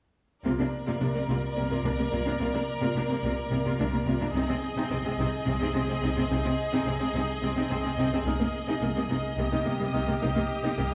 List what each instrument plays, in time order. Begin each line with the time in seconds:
0.44 double bass section C2, cello section C3, viola section A#3 F4, violin section A#4 D5
0.59 cello section C3, viola section A#3 D4
0.87 cello section C3, viola section A#3 F4
1.00 double bass section C2, cello section C3, viola section A#3 D4
1.14 cello section C3, viola section A#3
1.28 double bass section C2, cello section C3, viola section A#3 F4
1.56 double bass section C2, cello section C3, viola section A#3
1.70 cello section C3, viola section A#3 F4
1.84 double bass section C2, cello section C3, viola section A#3 D4
1.98 cello section C3, viola section A#3
2.12 double bass section C2, cello section C3, viola section A#3 F4
2.25 cello section C3, viola section A#3 D4
2.39 double bass section C2, cello section C3, viola section A#3 F4
2.53 cello section C3, viola section A#3 D4
2.81 cello section C3, viola section A#3 F4
2.95 double bass section C2, cello section C3, viola section A#3 D4
3.09 cello section C3, viola section A#3
3.23 double bass section C2, cello section C3, viola section A#3 F4
3.51 double bass section C2, cello section C3, viola section A#3
3.65 cello section C3, viola section A#3 F4
3.79 double bass section C2, cello section C3, viola section A#3 D4
3.93 cello section C3, viola section A#3
4.06 double bass section C2, cello section C3, viola section A#3 F4
4.20 cello section C3, viola section A#3 D4
4.34 double bass section C2, cello section C3, viola section C4 D#4, violin section G#4 D#5
4.48 cello section C3, viola section C4
4.77 cello section C3, viola section C4 D#4
4.90 double bass section C2, cello section C3, viola section C4
5.05 cello section C3, viola section G#3 C4
5.18 double bass section C2, cello section C3, viola section C4 D#4
5.46 double bass section C2, cello section C3, viola section G#3 C4
5.60 cello section C3, viola section C4 D#4
5.74 double bass section C2, cello section C3, viola section C4
5.88 cello section C3, viola section G#3 C4
6.02 double bass section C2, cello section C3, viola section C4 D#4
6.16 cello section C3, viola section C4
6.30 double bass section C2, cello section C3, viola section C4 D#4
6.44 cello section C3, viola section C4
6.72 cello section C3, viola section C4 D#4
6.85 double bass section C2, cello section C3, viola section C4
7.00 cello section C3, viola section G#3 C4
7.14 double bass section C2, cello section C3, viola section C4 D#4
7.42 double bass section C2, cello section C3, viola section G#3 C4
7.56 cello section C3, viola section C4 D#4
7.70 double bass section C2, cello section C3, viola section C4
7.84 cello section C3, viola section G#3 C4
7.97 double bass section C2, cello section C3, viola section C4 D#4
8.13 cello section C3, viola section C4
8.25 double bass section C2, cello section C3, viola section A#3 D#4, violin section D#5
8.40 cello section C3, viola section A#3
8.67 cello section C3, viola section A#3 D#4
8.81 double bass section C2, cello section C3, viola section A#3
8.95 cello section C3, viola section G3 A#3
9.09 double bass section C2, cello section C3, viola section A#3 D#4
9.37 double bass section C2, cello section C3, viola section G3 A#3, violin section G4
9.51 cello section C3, viola section A#3 D#4
9.65 double bass section C2, cello section C3, viola section A#3
9.79 cello section C3, viola section G3 A#3
9.93 double bass section C2, cello section C3, viola section A#3 D#4
10.07 cello section C3, viola section A#3
10.21 double bass section C2, cello section C3, viola section A#3 D#4
10.35 cello section C3, viola section A#3
10.63 cello section C3, viola section A#3 D#4
10.77 double bass section C2, cello section C3, viola section A#3